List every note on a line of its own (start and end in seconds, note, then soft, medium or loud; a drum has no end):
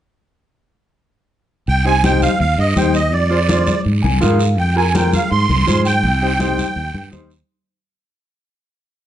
1.67 2.26 C2 medium
1.67 1.85 G5 medium
1.67 high conga soft
1.67 long guiro medium
1.85 1.92 D#4 medium
1.85 1.92 G4 medium
1.85 1.92 C5 medium
1.85 2.03 G#5 loud
2.04 2.29 D#4 medium
2.04 2.29 G4 medium
2.04 2.29 C5 medium
2.04 2.21 G5 medium
2.04 high conga medium
2.04 short guiro medium
2.22 2.39 F5 medium
2.22 high conga medium
2.22 short guiro medium
2.40 2.55 D#2 medium
2.40 2.59 F5 medium
2.40 high conga soft
2.40 long guiro medium
2.58 2.73 G2 medium
2.58 2.77 D#5 medium
2.76 3.12 D#2 medium
2.76 2.95 D#4 medium
2.76 2.96 G4 medium
2.76 2.96 C5 medium
2.76 2.94 G5 medium
2.76 high conga medium
2.76 short guiro medium
2.94 3.14 D#5 medium
2.94 short guiro medium
3.12 3.71 F2 medium
3.12 3.81 D5 medium
3.12 high conga soft
3.12 long guiro medium
3.30 3.37 F4 medium
3.30 3.37 G#4 medium
3.30 3.37 C5 medium
3.48 3.74 F4 medium
3.48 3.74 G#4 medium
3.48 3.74 C5 medium
3.48 high conga medium
3.48 short guiro medium
3.67 high conga medium
3.67 short guiro medium
3.85 4.00 G#2 medium
3.85 high conga soft
3.85 long guiro medium
4.02 4.18 C2 medium
4.02 4.20 G#5 medium
4.02 high conga medium
4.21 4.59 G#2 medium
4.21 4.40 F4 medium
4.21 4.41 G#4 medium
4.21 4.41 A#4 loud
4.21 4.55 F5 medium
4.21 high conga medium
4.21 short guiro medium
4.39 short guiro medium
4.58 5.16 F2 loud
4.58 4.75 G5 medium
4.58 high conga soft
4.58 long guiro medium
4.76 4.82 F4 medium
4.76 4.83 G#4 medium
4.76 4.83 A#4 medium
4.76 4.94 G#5 medium
4.94 5.20 F4 medium
4.94 5.20 G#4 medium
4.94 5.20 A#4 medium
4.94 5.12 G5 medium
4.94 high conga medium
4.94 short guiro medium
5.13 5.30 F5 medium
5.13 high conga medium
5.13 short guiro medium
5.31 5.46 G#2 medium
5.31 5.82 C6 loud
5.31 high conga soft
5.31 long guiro medium
5.49 5.63 C2 medium
5.49 high conga medium
5.67 6.05 G#2 medium
5.67 5.86 F4 medium
5.67 5.86 G#4 medium
5.67 5.86 C5 medium
5.67 high conga medium
5.67 short guiro medium
5.85 7.09 G5 medium
5.85 short guiro medium
6.03 6.61 C2 medium
6.03 high conga soft
6.03 long guiro medium
6.22 6.28 D#4 medium
6.22 6.28 G4 medium
6.22 6.28 C5 medium
6.39 6.65 D#4 medium
6.39 6.65 G4 medium
6.39 6.65 C5 medium
6.39 high conga medium
6.39 short guiro medium
6.58 high conga medium
6.58 short guiro medium
6.76 6.90 D#2 medium
6.76 high conga soft
6.76 long guiro medium
6.94 7.09 G2 medium
6.94 high conga medium
7.12 7.41 D#2 medium
7.12 7.31 D#4 medium
7.12 7.31 G4 medium
7.12 7.31 C5 medium
7.12 high conga medium
7.12 short guiro medium
7.30 short guiro medium